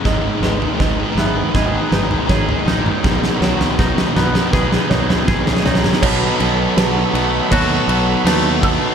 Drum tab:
CC |--------------------------------|--------------------------------|x---x---x---x---x---x---x---x---|
SD |o---o---o---o---o---o---o---o---|o-o-o-o-o-o-o-o-o-o-o-o-o-oooooo|--------o---------------o-------|
T2 |------------o-------o---o-----o-|------------o-------o---o-----o-|--------------------------------|
FT |o---o-o-o-------o-----o---o-o---|o---o-o-o-o-----o---o-o---o-o---|--------------------------------|
BD |o-------o-------o-------o-------|o-------o-------o-------o-------|o---------------o-----------o---|